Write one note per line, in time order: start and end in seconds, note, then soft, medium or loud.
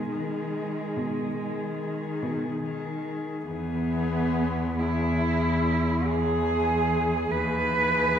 0.00 0.80 B2 medium
0.00 3.04 G#3 medium
0.00 0.11 G#4 soft
0.11 1.36 D#3 soft
0.11 1.36 G#4 soft
0.97 2.06 B2 medium
1.39 2.61 D#3 soft
1.39 2.61 G#4 soft
2.23 3.31 B2 medium
2.64 3.45 D#3 soft
2.64 3.45 G#4 soft
3.45 7.30 E2 medium
3.45 4.76 E3 medium
3.45 4.80 B3 medium
3.45 4.75 G#4 medium
4.79 6.05 E3 medium
4.79 6.07 E4 medium
4.79 6.04 G#4 medium
6.06 7.31 E3 medium
6.06 7.32 G#4 medium
6.06 7.31 G#4 soft
7.31 8.19 D#2 medium
7.31 8.19 E3 medium
7.31 8.19 G#4 medium
7.31 8.19 B4 loud